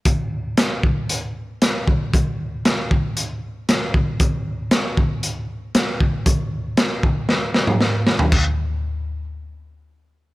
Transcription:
\new DrumStaff \with { instrumentName = "Drums" } \drummode { \time 4/4 \tempo 4 = 116 <hh bd>4 <hh sn>8 bd8 hh4 <hh sn>8 bd8 | <hh bd>4 <hh sn>8 bd8 hh4 <hh sn>8 bd8 | <hh bd>4 <hh sn>8 bd8 hh4 <hh sn>8 bd8 | <hh bd>4 <hh sn>8 bd8 sn8 sn16 toml16 sn8 sn16 tomfh16 |
<cymc bd>4 r4 r4 r4 | }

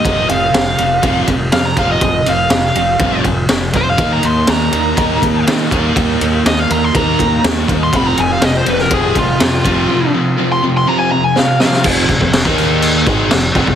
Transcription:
<<
  \new Staff \with { instrumentName = "Lead electric guitar" } { \time 4/4 \key f \minor \tempo 4 = 122 ees''8 f''2 r8 f''16 bes''16 f''16 ees''16~ | ees''8 f''2 r4 c''16 f''16~ | f''16 bes''16 c'''8 bes''2 r4 | r4 ees''16 f''16 bes''16 c'''16 bes''4 r8. c'''16 |
b''16 bes''16 aes''16 f''16 ees''16 c''16 b'16 bes'16 aes'8 f'4.~ | f'8 r8. c'''16 r16 c'''16 bes''16 aes''16 bes''16 aes''16 f''8 f''8 | r1 | }
  \new Staff \with { instrumentName = "Overdriven electric guitar" } { \clef bass \time 4/4 \key f \minor r1 | r1 | <ees bes ees'>4 <ees bes ees'>8 <ees bes ees'>8 <ees bes ees'>4 <ees bes ees'>8 <ees bes ees'>8 | <ees bes ees'>4 <ees bes ees'>8 <ees bes ees'>8 <ees bes ees'>4 <ees bes ees'>8 <ees bes ees'>8 |
<f, c f>4 <f, c f>8 <f, c f>8 <f, c f>4 <f, c f>8 <f, c f>8 | <f, c f>4 <f, c f>8 <f, c f>8 <f, c f>4 <f, c f>8 <f, c f>8 | <f, c f>8 <f, c>16 <f, c>8 <ees bes ees'>4~ <ees bes ees'>16 <aes, ees aes>8 <f, c>8 <f, c>16 <f, c>16 | }
  \new Staff \with { instrumentName = "Distorted electric guitar" } { \clef bass \time 4/4 \key f \minor <f, c f>8 <f, c>8 <f, c>8 <f, c>8 <f, c f>8 <f, c>8 <f, c>8 <f, c f>8 | <f, c>8 <f, c>8 <f, c>8 <f, c>8 <f, c f>8 <f, c>8 <f, c>8 <f, c>8 | <ees bes ees'>8 <ees bes>8 <ees bes>8 <ees bes>8 <ees bes ees'>8 <ees bes>8 <ees bes>8 <ees bes ees'>8 | <ees bes>8 <ees bes>8 <ees bes>8 <ees bes>8 <ees bes ees'>8 <ees bes>8 <ees bes>8 <ees bes>8 |
<f, c f>8 <f, c>8 <f, c>8 <f, c>8 <f, c f>8 <f, c>8 <f, c>8 <f, c f>8 | <f, c>8 <f, c>8 <f, c>8 <f, c>8 <f, c f>8 <f, c>8 <f, c>8 <f, c>8 | <f, c f>8 <f, c>16 <f, c>8 <ees bes ees'>4~ <ees bes ees'>16 <aes, ees aes>8 <f, c>8 <f, c>16 <f, c>16 | }
  \new Staff \with { instrumentName = "Overdriven electric guitar" } { \clef bass \time 4/4 \key f \minor <f, c f>8 <f, c>8 <f, c>8 <f, c>8 <f, c f>8 <f, c>8 <f, c>8 <f, c f>8 | <f, c>8 <f, c>8 <f, c>8 <f, c>8 <f, c f>8 <f, c>8 <f, c>8 <f, c>8 | <ees bes ees'>8 <ees bes>8 <ees bes>8 <ees bes>8 <ees bes ees'>8 <ees bes>8 <ees bes>8 <ees bes ees'>8 | <ees bes>8 <ees bes>8 <ees bes>8 <ees bes>8 <ees bes ees'>8 <ees bes>8 <ees bes>8 <ees bes>8 |
<f, c f>8 <f, c>8 <f, c>8 <f, c>8 <f, c f>8 <f, c>8 <f, c>8 <f, c f>8 | <f, c>8 <f, c>8 <f, c>8 <f, c>8 <f, c f>8 <f, c>8 <f, c>8 <f, c>8 | <f, c f>8 <f, c>16 <f, c>8 <ees bes ees'>4~ <ees bes ees'>16 <aes, ees aes>8 <f, c>8 <f, c>16 <f, c>16 | }
  \new Staff \with { instrumentName = "Fingered electric bass" } { \clef bass \time 4/4 \key f \minor f,,8 f,,8 f,,8 f,,8 f,,8 f,,8 f,8 f,,8 | f,,8 f,,8 f,,8 f,,8 f,,8 f,,8 f,,8 f,,8 | ees,8 ees,8 ees,8 ees,8 ees,8 ees,8 ees8 ees,8 | ees,8 ees,8 ees,8 ees,8 ees,8 ees,8 ees,8 ees,8 |
f,,8 f,,8 f,,8 f,,8 f,,8 f,,8 f,8 f,,8 | r1 | f,,8 f,,16 f,,8 ees,4~ ees,16 aes,,8 f,,8 f,,16 f,,16 | }
  \new DrumStaff \with { instrumentName = "Drums" } \drummode { \time 4/4 <bd cymr>8 cymr8 <cymr sn>8 cymr8 <bd cymr>8 <bd cymr>8 <cymr sn>8 <bd cymr>8 | <bd cymr>8 cymr8 <cymr sn>8 cymr8 <bd cymr>8 <bd cymr>8 <cymr sn>8 <bd cymr>8 | <bd cymr>8 cymr8 <cymr sn>8 cymr8 <bd cymr>8 <bd cymr>8 <cymr sn>8 <bd cymr>8 | <bd cymr>8 cymr8 <cymr sn>8 cymr8 <bd cymr>8 <bd cymr>8 <cymr sn>8 <bd cymr>8 |
<bd cymr>8 cymr8 <cymr sn>8 cymr16 sn16 <bd cymr>8 <bd cymr>8 <cymr sn>8 <bd cymr>8 | r4 r4 r4 sn8 sn16 sn16 | <cymc bd>8 <cymc bd>16 bd16 <cymc sn>16 bd16 cymc8 cymc8 <cymc bd>8 <cymc sn>8 <cymc bd>16 bd16 | }
>>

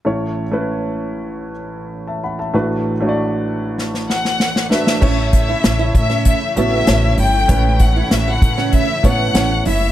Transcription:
<<
  \new Staff \with { instrumentName = "Violin section" } { \time 4/4 \key a \major \tempo 4 = 97 r1 | r2 r8 fis''4 e''8~ | e''8 e''4 e''8 e''8 e''4 g''8~ | g''8 fis''8 e''16 fis''8. e''8 fis''4 e''8 | }
  \new Staff \with { instrumentName = "Grand piano" } { \time 4/4 \key a \major << { r2. r16 <e'' a''>16 <fis'' b''>16 <e'' a''>16~ | <e'' a''>16 r2. r8. | r1 | r1 | } \\ { <a cis' e' cis''>8 r16 <a cis' e' b'>4. r4. r16 | <a d' fis' b'>8 r16 <a d' fis' cis'' d''>4. r4 r16 <a d' fis' b'>8 | <a cis' e' cis''>4. r4 <a cis' e' fis'>8 <a cis' e' cis''>8. r16 | <a cis' e' b'>4. r4 <a cis' e' cis''>8 <a cis' e' cis''>8. r16 | } >> }
  \new Staff \with { instrumentName = "Grand piano" } { \clef bass \time 4/4 \key a \major <a,, a,>1 | <a,, a,>1 | a,4. r2 r8 | a,4. r2 r8 | }
  \new Staff \with { instrumentName = "Steel-string acoustic guitar" } { \time 4/4 \key a \major r1 | r1 | cis'16 r8 e'16 r16 e'16 r16 cis'8 r16 b16 r4 r16 | cis'16 r8 e'16 r16 e'16 r16 cis'8 r16 b16 r16 cis'16 r16 e'16 r16 | }
  \new Staff \with { instrumentName = "String section" } { \clef bass \time 4/4 \key a \major r1 | r1 | <cis e a e'>1~ | <cis e a e'>1 | }
  \new Staff \with { instrumentName = "Upright bass" } { \clef bass \time 4/4 \key a \major r1 | r1 | a,,4 a,,8 a,8. r16 a,,8 a,,8 g,,8 | a,,4 a,,8 a,8. r16 a,,8 a,,8 fis,,8 | }
  \new DrumStaff \with { instrumentName = "Drums" } \drummode { \time 4/4 r4 r4 r4 r4 | r4 r4 sn16 sn16 sn16 sn16 sn16 sn16 sn16 sn16 | <cymc bd>8 <hh bd>8 <hh sn>8 <hh bd>16 sn16 <hh bd>8 hh8 <hh sn>8 hho8 | <hh bd>8 <hh bd>8 <hh sn>8 <hh bd>16 sn16 <hh bd>8 <hh bd>8 <hh sn>8 hho8 | }
>>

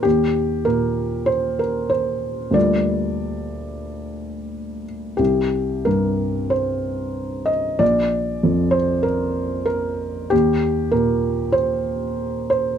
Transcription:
<<
  \new Staff \with { instrumentName = "Felt piano" } { \time 4/4 \key ees \major \tempo 4 = 94 g'4 bes'4 c''8 bes'8 c''4 | d''2.~ d''8 r8 | g'4 bes'4 c''4. ees''8 | d''4. c''8 bes'4 bes'4 |
g'4 bes'4 c''4. c''8 | }
  \new Staff \with { instrumentName = "Felt piano" } { \clef bass \time 4/4 \key ees \major ees,4 bes,2. | <d, g bes f'>1 | c,4 g,2. | bes,,4 f,2. |
ees,4 bes,2. | }
>>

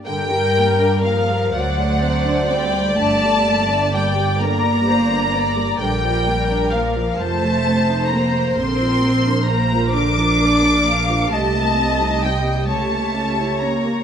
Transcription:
<<
  \new Staff \with { instrumentName = "Violin section" } { \time 6/8 \key g \minor \tempo 4. = 43 g''4 f''8 fis''4 g''8 | a''4 g''8 bes''4. | g''4 f''8 a''4 bes''8 | c'''4 bes''8 d'''4. |
a''4 g''8 a''4 ais''8 | }
  \new Staff \with { instrumentName = "Violin section" } { \time 6/8 \key g \minor bes'4. d''4.~ | d''4. bes'8 c''8 d''8 | bes'4. c''4.~ | c''4. bes'8 d''8 f''8 |
ees''4. cis''4. | }
  \new Staff \with { instrumentName = "Viola section" } { \time 6/8 \key g \minor << { bes'4. c''4. | d''2.~ | d''4. c''4. | bes'2. |
g'2. | } \\ { d16 g16 bes16 d'16 bes16 g16 fis16 a16 c'16 d'16 c'16 a16 | d16 g16 bes16 d'16 bes16 g16 d16 g16 bes16 d'16 bes16 g16 | d16 f16 bes16 d'16 bes16 f16 f16 a16 c'16 ees'16 c'16 a16 | d16 f16 bes16 d'16 bes16 f16 d16 f16 bes16 d'16 bes16 f16 |
g16 bes16 c'16 ees'16 c'16 bes16 g16 ais16 cis'16 e'16 cis'16 ais16 | } >> }
  \new Staff \with { instrumentName = "Cello section" } { \time 6/8 \key g \minor g4 f8 fis4 g8 | a4 g8 bes4. | g4 f8 a4 bes8 | c'4 bes8 d'4. |
a4 g8 a4 ais8 | }
  \new Staff \with { instrumentName = "Double bass section" } { \clef bass \time 6/8 \key g \minor g,4. d,4. | g,,2. | bes,,4. f,,4. | bes,,2. |
c,4. cis,4. | }
>>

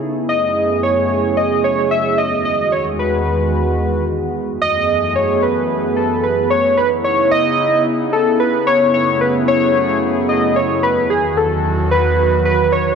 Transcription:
<<
  \new Staff \with { instrumentName = "Synth keys" } { \time 4/4 \key fis \dorian \tempo 4 = 111 r8 dis''4 cis''4 dis''8 cis''8 e''8 | dis''8 dis''8 cis''8 b'2 r8 | r8 dis''4 cis''8 b'4 a'8 b'8 | cis''8 b'8 cis''8 dis''4 r8 a'8 b'8 |
cis''8 cis''8 b'8 cis''4 r8 dis''8 cis''8 | b'8 gis'8 a'4 b'4 b'8 cis''8 | }
  \new Staff \with { instrumentName = "Ambient pad" } { \time 4/4 \key fis \dorian << { <fis, cis a e' gis'>1 | <e, gis fis'>1 | <fis, e b gis'>1 | <cis dis' e'>1 |
<fis, a e' gis'>1 | <e, fis fis'>1 | } \\ { b1 | dis1 | a1 | b1~ |
b1 | dis1 | } >> }
>>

